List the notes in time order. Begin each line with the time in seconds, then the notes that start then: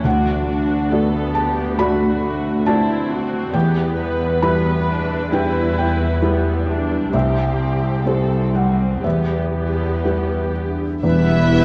Already playing: A3
0.04 D2 D3 D4 F#4 F#5
0.26 F#4
0.46 D4 F#4
0.68 A3
0.90 A3 B3 F#4 A4 D5
1.11 A3
1.34 G3 G4 A5
1.56 A3
1.79 A3 F#4 D5 B5
2.00 F#4
2.22 A3 D4
2.45 A3
2.66 A3 B3 C4 E4 F#4 D5 A5
2.89 A3
3.10 G3 F#4
3.33 A3
3.53 E2 E3 B3 G4 G5
3.77 B4
3.98 G3 B4
4.19 E4
4.42 G3 B3 E4 F#4 B4 B5
4.65 E4
4.88 D4
5.10 E4
5.31 G3 E4 B4 G5
5.55 B4
5.77 G3 G5
5.99 E4
6.22 F#3 G3 B3 E4 B4
6.45 E4
6.68 D4
6.91 E4
7.13 C2 C3 C4 G4 E5
7.37 E4
7.59 C4
7.82 G3
8.05 G3 A3 C4 E4 A4 C5
8.30 G3
8.54 F#3 G3 F#5
8.79 G3
9.04 E2 E3 B3 G4 E5
9.29 B4
9.55 G3
9.79 E4
10.04 G3 E4 F#4 B4
10.29 E4
10.55 D4
10.79 E4
11.02 E1 E2 E3 G3 B3 E4 B4 E5
11.25 G3
11.48 E4